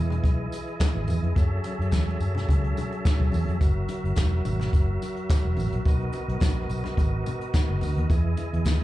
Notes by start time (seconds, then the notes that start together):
Already playing: E2 E3 E4 G#4 D#5
0.10 closed hi-hat, low conga
0.24 B1, kick, closed hi-hat, tambourine
0.52 closed hi-hat, tambourine, muted conga
0.67 closed hi-hat
0.79 kick, snare, closed hi-hat, tambourine, high conga
0.95 G#1
1.07 E2, closed hi-hat, tambourine, high conga
1.23 F2, closed hi-hat
1.35 F#2 F#3 C#4 A4 E5, kick, closed hi-hat, tambourine, muted conga
1.64 closed hi-hat, tambourine, muted conga
1.79 F#2, closed hi-hat
1.91 E2, kick, snare, closed hi-hat, tambourine, high conga
2.08 closed hi-hat
2.20 F#2, closed hi-hat, tambourine
2.35 snare, closed hi-hat, low conga
2.49 C#2, kick, closed hi-hat, tambourine, low conga
2.64 closed hi-hat
2.77 closed hi-hat, tambourine, muted conga, low conga
2.92 closed hi-hat
3.05 kick, snare, closed hi-hat, tambourine, high conga
3.20 B1, kick
3.32 E2, open hi-hat, tambourine, high conga
3.48 F2, closed hi-hat
3.61 F#1 F#4 A#4, kick, closed hi-hat, tambourine, muted conga
3.88 closed hi-hat, tambourine, muted conga
4.04 F#1, closed hi-hat
4.15 E1, kick, snare, closed hi-hat, tambourine, high conga
4.32 closed hi-hat
4.45 G#1, closed hi-hat, tambourine, low conga
4.60 snare, closed hi-hat, low conga
4.73 F#1, kick, closed hi-hat, tambourine
5.02 closed hi-hat, tambourine, muted conga
5.16 closed hi-hat
5.29 kick, snare, closed hi-hat, tambourine, high conga
5.45 E1
5.57 A1, open hi-hat, tambourine, high conga
5.72 A#1, closed hi-hat
5.85 B1 B3 A#4 D#5, kick, closed hi-hat, tambourine
6.00 closed hi-hat
6.12 closed hi-hat, tambourine, muted conga
6.28 B1, closed hi-hat
6.40 A#1, kick, snare, closed hi-hat, tambourine, high conga
6.69 B1, closed hi-hat, tambourine
6.84 snare, closed hi-hat, low conga
6.97 G#1, kick, closed hi-hat, tambourine, low conga
7.26 closed hi-hat, tambourine, muted conga, low conga
7.41 closed hi-hat
7.53 kick, snare, closed hi-hat, tambourine, high conga
7.69 F#1
7.81 D2, open hi-hat, tambourine, high conga
7.97 D#2, closed hi-hat
8.10 E2 E3 E4 G#4, kick, closed hi-hat, tambourine, muted conga
8.37 closed hi-hat, tambourine, muted conga
8.53 E2, closed hi-hat
8.65 D#2, kick, snare, closed hi-hat, tambourine, high conga